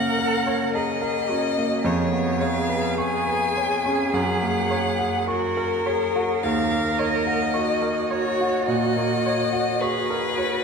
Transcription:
Already playing: C#3 A#3 C#4 A#4 C#5 F#5 A#5
0.19 A#4
0.47 C#5
0.74 G#4 D#5 A#5
1.02 A#4
1.29 C#4 F#4
1.57 A#3
1.83 F2 G#4 C#5
2.12 B3
2.40 C#5 F5
2.69 B4
2.98 G#5 C#6
3.27 B4
3.57 C#5
3.86 C#4
4.13 F#2 F#5
4.41 A#3
4.70 C#5
4.99 F#5
5.28 F#4 A#4 C#6
5.57 A#4
5.86 G#4 C#5
6.16 F#4
6.43 D#2 A#4 F5
6.72 A#3
6.99 C#5 D#5
7.27 F#5
7.54 F#4 C#6
7.82 A#4
8.11 C#5
8.41 F#4
8.67 A#2 D#5
8.97 A#3
9.26 C#5
9.53 F#5
9.81 G#4 B4 C#6
10.10 A#4
10.38 F#4 C#5

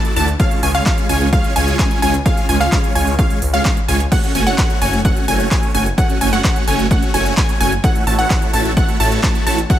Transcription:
Already playing: A3 E4 F#4 D5 A5
0.05 closed hi-hat
0.16 D2 A3 E4 F#4 D5 A5, open hi-hat
0.28 closed hi-hat
0.40 G#3 C#4 F4 C#5 F5, kick, closed hi-hat
0.51 closed hi-hat
0.63 C#2 G#3 C#4 F4 C#5 G#5, open hi-hat
0.74 G#3 C#4 F4 C#5 F5, closed hi-hat
0.86 F4 F5, kick, clap, closed hi-hat
0.98 closed hi-hat
1.09 C#2 G#3 C#4 F4 C#5 G#5, open hi-hat
1.21 C#2, closed hi-hat
1.33 G#3 C#4 F4 C#5 F5, kick, closed hi-hat
1.44 closed hi-hat
1.56 C#2 G#3 C#4 F4 C#5 G#5, open hi-hat
1.68 closed hi-hat
1.79 C#4 F4 G#5, kick, clap, closed hi-hat
1.91 closed hi-hat
2.02 C#2 G#3 C#4 F4 C#5 G#5, open hi-hat
2.14 closed hi-hat
2.26 G#3 C#4 F4 C#5 F5, kick, closed hi-hat
2.37 closed hi-hat
2.49 C#2 G#3 C#4 F4 C#5 G#5, open hi-hat
2.60 G#3 C#4 F4 C#5 F5, clap, closed hi-hat
2.72 G#3 C#4 C#5 F5, kick, clap, closed hi-hat
2.84 closed hi-hat
2.95 C#2 G#3 C#4 F4 C#5 G#5, open hi-hat
3.07 C#2, closed hi-hat
3.19 G#3 C#4 F4 C#5 F5, kick, closed hi-hat
3.30 closed hi-hat
3.42 C#2, open hi-hat
3.54 G#3 C#4 F4 C#5 F5, closed hi-hat
3.65 C#4 F5, kick, clap, closed hi-hat
3.77 closed hi-hat
3.88 C#2 G#3 C#4 F4 C#5 G#5, open hi-hat
4.00 closed hi-hat
4.12 A3 C#4 F#4 C#5 F#5, kick, closed hi-hat, crash
4.23 closed hi-hat
4.35 F#1 A3 C#4 F#4 C#5 G#5, open hi-hat
4.47 A3 C#4 F#4 C#5 F#5, closed hi-hat
4.58 F#5, kick, clap, closed hi-hat
4.70 closed hi-hat
4.82 F#1 A3 C#4 F#4 C#5 G#5, open hi-hat
4.93 F#1, closed hi-hat
5.05 A3 C#4 F#4 C#5 F#5, kick, closed hi-hat
5.17 closed hi-hat
5.28 F#1 A3 C#4 F#4 C#5 G#5, open hi-hat
5.40 closed hi-hat
5.51 G#5, kick, clap, closed hi-hat
5.63 closed hi-hat
5.74 F#1 A3 C#4 F#4 C#5 G#5, open hi-hat
5.86 closed hi-hat
5.98 A3 C#4 F#4 C#5 F#5, kick, closed hi-hat
6.10 closed hi-hat
6.21 F#1 A3 C#4 F#4 C#5 G#5, open hi-hat
6.33 A3 C#4 F#4 C#5 F#5, clap, closed hi-hat
6.44 C#4 C#5 F#5, kick, clap, closed hi-hat
6.56 closed hi-hat
6.67 F#1 A3 C#4 F#4 C#5 G#5, open hi-hat
6.79 F#1, closed hi-hat
6.91 A3 C#4 F#4 C#5 F#5, kick, closed hi-hat
7.03 closed hi-hat
7.14 F#1 A3 C#4 F#4 C#5 G#5, open hi-hat
7.26 closed hi-hat
7.37 A3 F#4 G#5, kick, clap, closed hi-hat
7.49 closed hi-hat
7.61 F#1 A3 C#4 F#4 C#5 G#5, open hi-hat
7.72 closed hi-hat
7.84 A3 E4 F#4 C#5 F#5, kick, closed hi-hat
7.95 closed hi-hat
8.07 A1 A3 E4 F#4 C#5 A5, open hi-hat
8.19 A3 E4 F#4 C#5 F#5, closed hi-hat
8.30 E4 F#4 F#5, kick, clap, closed hi-hat
8.42 closed hi-hat
8.53 A1 A3 E4 F#4 C#5 A5, open hi-hat
8.65 A1, closed hi-hat
8.77 A3 E4 F#4 C#5 F#5, kick, closed hi-hat
8.89 closed hi-hat
9.00 A1 A3 E4 F#4 C#5 A5, open hi-hat
9.12 closed hi-hat
9.23 A5, kick, clap, closed hi-hat
9.35 closed hi-hat
9.47 A1 A3 E4 F#4 C#5 A5, open hi-hat
9.58 closed hi-hat
9.70 A3 E4 F#4 C#5 F#5, kick, closed hi-hat

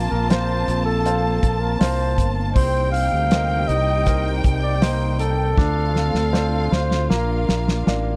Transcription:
Already playing: A#3 C4 F4 A#4 C5 F5 A5
0.10 A#1 A#4
0.29 A#4 C5 F5, snare, hi-hat pedal, open hi-hat
0.68 A#1, hi-hat pedal, open hi-hat
0.85 A4
1.06 F4 C5 F5, hi-hat pedal, open hi-hat
1.43 A#1, kick, hi-hat pedal, open hi-hat
1.61 A#4
1.80 C2 A#4 C5 F5, snare, hi-hat pedal, open hi-hat
2.18 G1, kick, hi-hat pedal, open hi-hat
2.55 C2 C3 G3 C4 D#4 C5 G5, kick, hi-hat pedal, open hi-hat
2.92 F5, hi-hat pedal, open hi-hat
3.13 D2
3.31 A#4 C5 D#5, snare, hi-hat pedal, open hi-hat
3.68 C2 D#5, hi-hat pedal, open hi-hat
4.06 A#4 C5 D#5, kick, hi-hat pedal, open hi-hat
4.44 C2, kick, hi-hat pedal, open hi-hat
4.63 D5
4.82 A#3 C5 D#5, snare, hi-hat pedal, open hi-hat
5.19 A4, hi-hat pedal, open hi-hat
5.57 D2 D3 A3 C4 D4 F4 F5, kick, snare
5.96 snare
6.14 D2, snare
6.33 C5 D5 F5, snare
6.72 D2 C5, snare
6.91 snare
7.10 A#1 A#3 D4 A#4 F5, snare
7.49 A#1, snare
7.68 snare
7.87 A1 A#4 D5 F5, snare

